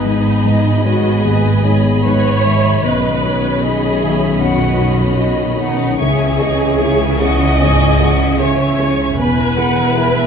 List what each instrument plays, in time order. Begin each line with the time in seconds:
Already playing: double bass section G#1, cello section G#2, felt piano G#2, french horn section G#3 B3, viola section D#4, flute B4, violin section D#5 G#5 B5
0.05 felt piano G#3 B3 D#4
0.45 felt piano G#3 B3 D#4, flute D#5
0.85 felt piano G#3 B3 D#4, viola section F#4, flute C#5
1.23 felt piano D#2, viola section G#4, flute B4
1.64 felt piano G#3 B3 D#4, flute C#5
2.04 felt piano G#3 B3 D#4, flute B4, viola section C#5
2.45 felt piano D#3 G#3 B3, flute E5
2.82 double bass section B1, felt piano B1, cello section B2, french horn section D#3 C#4, viola section B4, violin section C#5 D#5, flute D#5
3.23 felt piano C#4 D#4, flute C#5
3.62 felt piano C#4 D#4, viola section G#4, flute D#5
4.00 felt piano D#3 C#4, flute E5
4.40 felt piano F#2, viola section F#4, flute F#5
4.81 felt piano C#4 D#4
5.20 felt piano C#4 D#4, flute D#5
5.59 felt piano C#4 D#4, viola section D#4, flute F#5
5.98 double bass section C#2, felt piano C#2, cello section C#3, french horn section E3, viola section G#4, violin section C#5 G#5 C#6, flute E5
6.18 violin section E5 G#5 C#6
6.39 felt piano C#4 E4 G#4, violin section C#5 G#5 C#6, flute D#5
6.58 violin section E5 G#5 C#6
6.80 felt piano C#4 E4 G#4, violin section C#5 G#5 C#6, flute E5
6.99 violin section E5 G#5 C#6
7.20 felt piano C#4 E4 G#4, violin section C#5 G#5 C#6, viola section D#5, flute F#5
7.41 violin section E5 G#5 C#6
7.60 felt piano G#2, violin section C#5 G#5 C#6, flute G#5
7.81 violin section E5 G#5 C#6
7.99 felt piano C#4 E4 G#4, violin section C#5 G#5 C#6, flute F#5
8.19 violin section E5 G#5 C#6
8.38 felt piano C#4 E4 G#4, viola section C#5, violin section C#5 G#5 C#6, flute E5
8.60 violin section E5 G#5 C#6
8.78 felt piano C#4 E4 G#4, violin section C#5 G#5
8.84 violin section C#6
9.00 violin section E5 G#5 C#6
9.18 double bass section E1, felt piano E2, cello section E2, french horn section E3 B3, viola section B4, violin section B4 G#5 B5, flute G#5
9.39 violin section E5 G#5 B5
9.57 felt piano B3 E4 G#4, violin section B4 G#5 B5, flute F#5
9.76 violin section E5 G#5 B5
9.97 felt piano B3 E4 G#4, violin section B4 G#5 B5, flute E5
10.17 violin section E5 G#5 B5